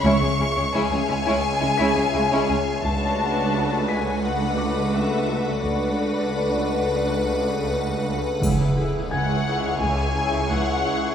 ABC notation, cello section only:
X:1
M:4/4
L:1/16
Q:1/4=86
K:C#phr
V:1 name="Cello section" clef=bass
C,, C,, C,, C,, C,, C,, C,, C,, z C,, C,, C,, C,, C,, C,, z | C,,16 | C,,12- C,,3 z | C,,4 C,,4 C,,4 C,,4 |]